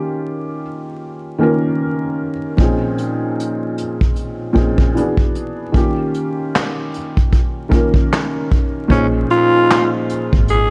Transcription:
Already playing: felt piano D#3 A#3 C#4 F4 G4
1.38 felt piano D#3 A#3 C#4 F4
1.43 felt piano A#4
2.57 felt piano A#2 F3 C4 C#4 D#4, kick, closed hi-hat
2.62 felt piano G#4
2.98 closed hi-hat
3.40 closed hi-hat
3.78 closed hi-hat
4.01 kick, closed hi-hat
4.16 closed hi-hat
4.53 felt piano A#2 F3 C4 C#4 D#4, kick, closed hi-hat
4.57 felt piano G#4
4.78 kick
4.94 felt piano E3 B3 D4 F#4, closed hi-hat
4.99 felt piano G#4
5.17 kick
5.35 closed hi-hat
5.72 felt piano D#3 A#3 C#4 F4, kick, closed hi-hat
5.77 felt piano G4
6.14 closed hi-hat
6.56 snare, clap, closed hi-hat
6.94 closed hi-hat
7.17 kick, closed hi-hat
7.32 kick, closed hi-hat
7.69 felt piano D#3 A#3 C#4 F4, kick, closed hi-hat
7.73 felt piano A#4
7.94 kick
8.13 snare, clap, closed hi-hat
8.51 kick, closed hi-hat
8.88 fingered electric bass A#1, felt piano A#2 F3 C#4 D#4 C5, tenor saxophone C#4, kick, closed hi-hat
8.92 felt piano G#4
9.30 tenor saxophone F4, closed hi-hat
9.71 snare, clap, closed hi-hat
10.10 closed hi-hat
10.33 fingered electric bass G#1, kick
10.48 tenor saxophone G#4, closed hi-hat

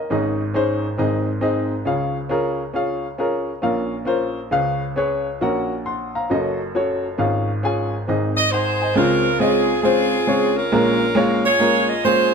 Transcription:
Already playing: upright piano A#4 D#5
0.10 upright piano G#1 G#2 C#4 D#4 G#4 D#5
0.54 upright piano C#4 D#4 G#4 C5
0.98 upright piano G#1 G#2 C4 D#4 G#4 D#5
1.41 upright piano C4 D#4 G#4 D#5
1.85 upright piano C#2 C#3 C#4 F4 G#4 F5
2.29 upright piano C#4 F4 G#4 A#4
2.73 upright piano C#4 F4 G#4 F5
3.18 upright piano C#4 F4 G#4 A#4
3.62 upright piano A#1 A#2 C#4 F4 A#4 F5
4.05 upright piano C#4 F4 A#4 C5
4.51 upright piano C#2 C#3 C#4 G#4 B4 F5
4.96 upright piano C#4 G#4 B4 C#5
5.41 upright piano A#1 A#2 C#4 F#4 A#4 F#5
5.86 upright piano F#5 C6
6.15 upright piano F5 A#5
6.30 upright piano F#1 F#2 C#4 F#4 A4 D#5
6.75 upright piano C#4 F#4 A4 C#5
7.18 upright piano G#1 G#2 C#4 F4 G#4 F5
7.63 upright piano C#4 F4 G#4 G#5
8.07 upright piano G#1 G#2 C4 D#4 G#4 D#5
8.37 saxophone section D#5
8.51 saxophone section D#4 G#4 C5, upright piano F#5 C6
8.82 upright piano D#5 G#5
8.95 upright piano C#2 C#3 G#3 C4 C#4 F4 C5, saxophone section F4 A#4
9.39 upright piano G#3 C4 C#4 F4 D#5, saxophone section C4 F4 G#4
9.82 upright piano G#3 C4 C#4 F4 C5, saxophone section C4 F4 G#4
10.27 upright piano G#3 C4 C#4 F4 C#5
10.55 saxophone section C#4 F4 A#4
10.72 upright piano A#1 A#2 G#3 A#3 C#4 F4 A#4
11.15 upright piano G#3 A#3 C#4 F4 C#5
11.45 saxophone section F4 G#4 C#5
11.59 upright piano G#3 A#3 C#4 F4 A#4
11.89 saxophone section D#5
12.04 upright piano G#3 A#3 C#4 F4 G#4, saxophone section F4 G#4 C5

